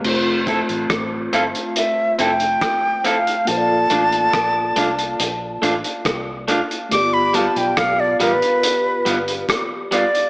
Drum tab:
CC |x---------------|----------------|----------------|
HH |--xxx-xxx-xxx-xx|x-xxx-xxx-xxx-xx|x-xxx-xxx-xxx-xx|
SD |----r-------r---|----r-------r---|----r-------r---|
BD |--o-o-------o---|----o-------o---|----o-------o---|